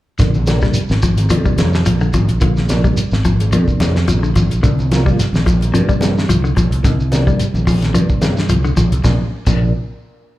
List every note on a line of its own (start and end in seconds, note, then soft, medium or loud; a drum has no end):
0.19 0.68 A#1 loud
0.19 0.31 C3 medium
0.19 0.36 D3 medium
0.19 0.31 F3 medium
0.19 0.31 A#3 medium
0.19 0.31 D4 medium
0.19 kick medium
0.19 snare soft
0.19 closed hi-hat medium
0.19 shekere medium
0.34 high conga medium
0.34 shekere soft
0.47 0.79 C3 medium
0.47 0.79 F3 medium
0.47 0.79 A#3 medium
0.47 0.79 D4 medium
0.47 snare medium
0.47 closed hi-hat medium
0.47 high conga medium
0.47 shekere medium
0.61 0.79 G3 medium
0.61 kick medium
0.61 snare soft
0.61 shekere soft
0.74 muted fingered electric bass stroke soft
0.74 closed hi-hat medium
0.74 shekere medium
0.89 1.32 G#1 medium
0.89 snare medium
0.89 high conga medium
0.89 shekere soft
1.02 1.19 F3 medium
1.02 kick medium
1.02 closed hi-hat medium
1.02 low conga medium
1.02 shekere medium
1.17 closed hi-hat medium
1.17 high conga medium
1.17 shekere soft
1.30 1.43 F2 medium
1.30 1.73 C3 medium
1.30 1.39 F3 medium
1.30 1.73 F3 medium
1.30 1.73 A#3 medium
1.30 1.74 D4 medium
1.30 closed hi-hat medium
1.30 high conga medium
1.30 shekere medium
1.45 1.62 G3 medium
1.45 muted fingered electric bass stroke soft
1.45 kick medium
1.45 shekere soft
1.57 1.82 F2 medium
1.57 snare medium
1.57 closed hi-hat medium
1.57 high conga medium
1.57 shekere medium
1.73 snare medium
1.73 shekere soft
1.86 2.10 A#1 medium
1.86 1.95 F3 medium
1.86 closed hi-hat medium
1.86 high conga medium
1.86 shekere medium
2.01 2.09 D3 medium
2.01 shekere soft
2.13 2.27 G#1 medium
2.13 2.30 F3 medium
2.13 kick medium
2.13 closed hi-hat medium
2.13 high conga medium
2.13 low conga medium
2.13 shekere medium
2.28 2.39 A#1 medium
2.28 closed hi-hat medium
2.28 shekere soft
2.40 2.89 A#1 medium
2.40 2.52 C3 medium
2.40 2.58 D3 medium
2.40 2.53 F3 medium
2.40 2.53 A#3 medium
2.40 2.53 F4 medium
2.40 kick medium
2.40 closed hi-hat medium
2.40 shekere medium
2.56 snare soft
2.56 high conga medium
2.56 shekere soft
2.69 3.00 C3 medium
2.69 3.01 F3 medium
2.69 3.01 A#3 medium
2.69 3.01 D4 medium
2.69 snare medium
2.69 closed hi-hat medium
2.69 high conga medium
2.69 low conga medium
2.69 shekere medium
2.84 3.01 G3 medium
2.84 kick medium
2.84 shekere soft
2.97 muted fingered electric bass stroke soft
2.97 closed hi-hat medium
2.97 shekere medium
3.11 3.54 G#1 medium
3.11 snare medium
3.11 shekere soft
3.25 3.41 F3 medium
3.25 kick medium
3.25 closed hi-hat soft
3.25 low conga medium
3.25 shekere medium
3.40 closed hi-hat soft
3.40 high conga medium
3.40 shekere soft
3.52 3.65 F2 loud
3.52 3.95 C3 medium
3.52 3.95 F3 medium
3.52 3.62 F3 medium
3.52 3.95 A#3 medium
3.52 3.96 D4 medium
3.52 closed hi-hat medium
3.52 high conga medium
3.52 shekere medium
3.67 muted fingered electric bass stroke soft
3.67 kick medium
3.67 shekere soft
3.80 4.04 F2 medium
3.80 snare medium
3.80 closed hi-hat soft
3.80 high conga medium
3.80 shekere medium
3.96 snare medium
3.96 shekere soft
4.08 4.32 A#1 medium
4.08 4.17 F3 medium
4.08 closed hi-hat medium
4.08 high conga medium
4.08 low conga medium
4.08 shekere medium
4.23 4.31 D3 medium
4.23 shekere soft
4.35 4.49 G#1 medium
4.35 4.52 F3 medium
4.35 kick medium
4.35 closed hi-hat soft
4.35 high conga medium
4.35 low conga medium
4.35 shekere medium
4.50 4.61 A#1 medium
4.50 closed hi-hat medium
4.50 shekere soft
4.62 5.11 C2 loud
4.62 4.74 C3 medium
4.62 4.80 D3 medium
4.62 4.74 F3 medium
4.62 4.74 A#3 medium
4.62 4.75 D4 medium
4.62 kick medium
4.62 closed hi-hat medium
4.62 shekere medium
4.79 high conga medium
4.79 shekere soft
4.91 5.22 C3 medium
4.91 5.23 F3 medium
4.91 5.23 A#3 medium
4.91 5.23 F4 medium
4.91 snare medium
4.91 closed hi-hat medium
4.91 high conga medium
4.91 shekere medium
5.06 5.22 G3 medium
5.06 kick medium
5.06 shekere soft
5.18 muted fingered electric bass stroke soft
5.18 snare soft
5.18 closed hi-hat medium
5.18 shekere medium
5.33 5.75 A#1 medium
5.33 snare medium
5.33 high conga medium
5.33 shekere soft
5.46 5.63 F3 medium
5.46 kick medium
5.46 closed hi-hat soft
5.46 low conga medium
5.46 shekere medium
5.61 closed hi-hat medium
5.61 high conga medium
5.61 shekere soft
5.73 5.87 G2 loud
5.73 6.16 C3 medium
5.73 6.16 F3 medium
5.73 5.83 F3 medium
5.73 6.16 A#3 medium
5.73 6.16 D4 medium
5.73 closed hi-hat medium
5.73 shekere medium
5.89 6.05 G3 medium
5.89 kick medium
5.89 shekere soft
6.01 6.25 G2 medium
6.01 snare medium
6.01 closed hi-hat medium
6.01 high conga medium
6.01 shekere medium
6.18 snare medium
6.18 shekere soft
6.29 6.53 C2 medium
6.29 6.38 F3 medium
6.29 closed hi-hat medium
6.29 high conga medium
6.29 shekere medium
6.44 6.52 D3 medium
6.44 shekere soft
6.56 6.70 A#1 medium
6.56 6.73 F3 medium
6.56 kick medium
6.56 closed hi-hat medium
6.56 low conga medium
6.56 shekere medium
6.71 6.82 C2 medium
6.71 closed hi-hat medium
6.71 shekere soft
6.83 7.32 C2 loud
6.83 6.95 C3 medium
6.83 7.01 D3 medium
6.83 6.95 F3 medium
6.83 6.95 A#3 medium
6.83 6.95 D#4 medium
6.83 kick medium
6.83 snare soft
6.83 closed hi-hat medium
6.83 shekere medium
7.00 shekere soft
7.12 7.43 C3 medium
7.12 7.43 F3 medium
7.12 7.43 A#3 medium
7.12 7.43 D4 medium
7.12 snare medium
7.12 closed hi-hat medium
7.12 high conga medium
7.12 low conga medium
7.12 shekere medium
7.27 7.43 G3 medium
7.27 kick medium
7.27 shekere soft
7.39 muted fingered electric bass stroke soft
7.39 closed hi-hat medium
7.39 shekere medium
7.54 7.95 A#1 medium
7.54 high conga medium
7.54 shekere soft
7.67 7.83 F3 medium
7.67 kick medium
7.67 open hi-hat medium
7.67 low conga medium
7.67 shekere medium
7.82 snare soft
7.82 closed hi-hat medium
7.82 high conga medium
7.82 shekere soft
7.94 8.07 G2 loud
7.94 8.37 C3 medium
7.94 8.37 F3 medium
7.94 8.03 F3 medium
7.94 8.37 A#3 medium
7.94 8.37 D4 medium
7.94 closed hi-hat medium
7.94 shekere medium
8.09 muted fingered electric bass stroke soft
8.09 kick medium
8.09 shekere soft
8.22 8.46 G2 medium
8.22 snare medium
8.22 closed hi-hat medium
8.22 high conga medium
8.22 shekere medium
8.37 snare medium
8.37 shekere soft
8.49 8.73 C2 medium
8.49 8.58 F3 medium
8.49 closed hi-hat medium
8.49 high conga medium
8.49 low conga medium
8.49 shekere medium
8.65 8.72 D3 medium
8.65 shekere soft
8.77 8.90 A#1 medium
8.77 8.93 F3 medium
8.77 kick medium
8.77 closed hi-hat soft
8.77 high conga medium
8.77 low conga medium
8.77 shekere medium
8.92 9.03 C2 medium
8.92 closed hi-hat soft
8.92 shekere soft
9.04 9.21 A#1 medium
9.04 9.15 A#2 medium
9.04 9.21 C3 medium
9.04 9.21 F3 medium
9.04 9.21 A#3 medium
9.04 9.21 D4 medium
9.04 kick medium
9.04 snare medium
9.04 low conga loud
9.04 shekere medium
9.46 9.72 A#1 medium
9.46 9.64 A#2 medium
9.46 9.73 C3 medium
9.46 9.73 F3 medium
9.46 9.73 A#3 medium
9.46 9.73 D4 medium
9.46 kick medium
9.46 crash medium
9.46 low conga medium
9.46 shekere medium